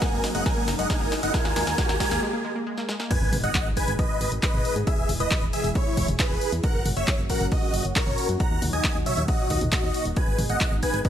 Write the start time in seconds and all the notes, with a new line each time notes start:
Already playing: C#3 F#3 A#3 F#4 A#4, riser
0.02 G#3 A#4 G#5, kick, snare, closed hi-hat
0.13 F#1 A#3
0.24 D#4, snare, open hi-hat, mid tom
0.35 F#1 G#3 D#5 F#5, closed hi-hat
0.46 G#3 A#4 G#5, kick, snare, closed hi-hat
0.57 A#3
0.68 F#1 D#4, snare, open hi-hat
0.79 F#1 G#3 D#5 F#5, closed hi-hat
0.90 G#3 A#4 G#5, kick, snare, closed hi-hat
1.01 F#1 A#3, mid tom
1.12 D#4, snare, open hi-hat
1.23 F#1 G#3 D#5 F#5, closed hi-hat
1.34 D#3 G#3 A#4 G#5, kick, snare, closed hi-hat
1.45 D#2 A#3, snare
1.56 D#2 G#3 A#4 G#5, snare, open hi-hat, mid tom
1.67 D#2 A#3, snare, closed hi-hat
1.78 G#3 A#4 G#5, kick, snare, closed hi-hat
1.89 D#2 A#3, snare
2.00 G#3 A#4 G#5, kick, snare, open hi-hat, mid tom
2.11 D#2 A#3, snare, closed hi-hat
2.22 G#3
2.33 A#3
2.45 G#3
2.56 A#3
2.67 G#3
2.78 A#3, snare
2.89 G#3, snare
3.00 A#3, snare
3.10 B2 D#3 G#3 D#4 G#4 B4 G#5, kick, closed hi-hat, crash, impact
3.22 G#1
3.33 G#1, open hi-hat, mid tom
3.44 G#1 D#5 F#5, closed hi-hat
3.55 kick, clap, closed hi-hat
3.66 G#1
3.77 B4 G#5, kick, open hi-hat
3.88 G#1, closed hi-hat
3.99 B4 D#5, kick, closed hi-hat
4.21 G#1, open hi-hat
4.32 G#1, closed hi-hat
4.43 B4 D#5, kick, clap, closed hi-hat
4.54 G#1, mid tom
4.65 open hi-hat
4.76 G#2, closed hi-hat
4.87 B2 E3 E4 G#4 E5, kick, closed hi-hat
4.98 E1
5.09 E1, open hi-hat, mid tom
5.20 E1 B4 D#5, closed hi-hat
5.31 kick, clap, closed hi-hat
5.42 E1
5.53 G#4 E5, open hi-hat
5.64 E1, closed hi-hat
5.75 E4 C#5, kick, closed hi-hat
5.97 E1, kick, open hi-hat
6.08 E1, closed hi-hat, mid tom
6.19 G#4 B4, kick, clap, closed hi-hat
6.30 E1
6.41 open hi-hat
6.52 E2, closed hi-hat
6.63 A#2 C#3 F#3 C#4 F#4 A#4 F#5, kick, closed hi-hat
6.75 F#1
6.86 F#1, open hi-hat, mid tom
6.97 F#1 C#5 E5, closed hi-hat
7.08 kick, clap, closed hi-hat
7.19 F#1
7.30 A#4 F#5, kick, open hi-hat
7.41 F#1, closed hi-hat
7.52 F#4 D#5, kick, closed hi-hat
7.74 F#1, open hi-hat
7.85 F#1, closed hi-hat
7.96 A#4 C#5, kick, clap, closed hi-hat
8.07 F#1, mid tom
8.18 open hi-hat
8.29 F#2, closed hi-hat
8.40 A#2 D#3 F#3 D#4 F#5 A#5, kick, closed hi-hat
8.51 D#2
8.62 D#2, open hi-hat, mid tom
8.73 D#2 D#5 G#5, closed hi-hat
8.84 kick, clap, closed hi-hat
8.95 D#2
9.06 C#5 E5, open hi-hat, mid tom
9.17 D#2, closed hi-hat
9.28 F#4 D#5, kick, closed hi-hat
9.50 D#2, kick, open hi-hat
9.61 D#2, closed hi-hat, mid tom
9.72 F#4 D#5, kick, clap, closed hi-hat
9.83 D#2
9.94 open hi-hat
10.05 D#1, closed hi-hat
10.16 B2 G#3 G#4 B4 G#5, kick, closed hi-hat
10.28 G#1
10.39 G#1, open hi-hat, mid tom
10.50 G#1 D#5 F#5, closed hi-hat
10.61 kick, clap, closed hi-hat
10.72 G#1
10.83 B4 G#5, kick, open hi-hat
10.94 G#1, closed hi-hat
11.05 B4 D#5, kick, closed hi-hat